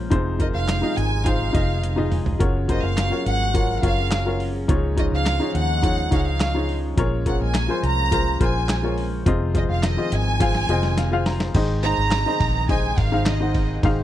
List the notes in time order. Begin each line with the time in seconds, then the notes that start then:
Already playing: F3 C#4 F4 G#4 A#4 C5 C#5
0.10 F1 C3 G#3 D#4 F4 G#4 C5, kick, closed hi-hat
0.39 D#4 F4 G#4 A#4 D#5, kick, closed hi-hat
0.54 F1 F5
0.68 snare, clap, closed hi-hat
0.82 D#4 F4 G#4 D#5
0.97 G#1 G#5, snare, closed hi-hat
1.25 D#4 F4 G#4 C5 F5, kick, closed hi-hat
1.53 F1 D#4 F4 G#4 D#5, kick, closed hi-hat
1.83 closed hi-hat, high tom
1.96 D#4 F4 G#4 D#5, mid tom
2.12 mid tom, open hi-hat
2.26 floor tom
2.39 F#1 C#3 F#3 A#3 C#4 F4 F#4 A#4 C#5, kick, closed hi-hat
2.68 F4 F#4 A#4 C5 D#5, kick, closed hi-hat
2.83 F#1 F5
2.97 snare, clap, closed hi-hat
3.10 F4 F#4 A#4 C#5
3.26 G#1 F#5, closed hi-hat
3.54 F4 F#4 A#4 C#5, kick, closed hi-hat
3.82 F#1 F4 F#4 A#4 C#5 F5, kick, closed hi-hat
4.11 snare, clap, closed hi-hat
4.25 F4 F#4 A#4 C#5
4.40 open hi-hat
4.68 C#2 G#2 F3 G#3 D#4 F4 G#4 C#5, kick, closed hi-hat
4.97 D#4 F4 G#4 C#5 D#5, kick, closed hi-hat
5.12 C#2 F5
5.26 snare, clap, closed hi-hat
5.40 D#4 F4 G#4 C#5
5.55 D#2 F#5, closed hi-hat
5.82 D#4 F4 G#4 C#5, kick, closed hi-hat
6.11 C#2 D#4 F4 G#4 C#5 F5, kick, closed hi-hat
6.19 F#5
6.27 F5
6.40 snare, clap, closed hi-hat
6.54 D#4 F4 G#4 C#5
6.69 open hi-hat
6.97 A#1 F3 A#3 F4 G#4 A#4 C#5, kick, closed hi-hat
7.26 F4 G#4 A#4 C#5 F#5, kick, closed hi-hat
7.40 A#1 G#5
7.54 snare, clap, closed hi-hat
7.68 F4 G#4 A#4 C5
7.83 C2 A#5, closed hi-hat
8.11 F4 G#4 A#4 C5, kick, closed hi-hat
8.40 A#1 F4 G#4 A#4 C5 G#5, kick, closed hi-hat
8.69 snare, clap, closed hi-hat
8.83 F4 G#4 A#4 C#5
8.98 open hi-hat
9.25 F1 C3 D#3 F3 C4 F4 G#4 C5 D#5, kick, closed hi-hat
9.54 F4 G#4 C5 D#5, kick, closed hi-hat
9.69 F1 F5
9.83 D#5, snare, clap, closed hi-hat
9.97 F4 G#4 C5 D#5
10.12 G#1 G#5, snare, closed hi-hat
10.40 F4 G#4 C5 F5, kick, snare, closed hi-hat
10.55 snare
10.69 F1 F4 G#4 C5 D#5, closed hi-hat
10.83 snare
10.97 F5, snare, closed hi-hat
11.11 F4 G#4 C5 F5
11.26 A#5, snare, open hi-hat
11.40 snare
11.54 G#1 G#2 C3 D#3 G#3 D#4 G#4 C5 D#5, kick, crash, ride
11.83 D#4 G#4 C5 D#5 A#5, ride
11.98 G#1
12.11 snare, clap, ride
12.26 D#4 G#4 C5 D#5
12.40 A#1, kick, ride
12.69 D#4 G#4 C5 D#5 G#5, kick, ride
12.98 G#1 F5, kick, ride
13.12 D#4 G#4 C5 F5
13.26 D#5, snare, clap, ride
13.40 D#4 G#4 C5 F#5
13.54 kick, ride
13.83 G#1 G#2 D#3 D#4 F#4 G#4 C5 F5, kick, ride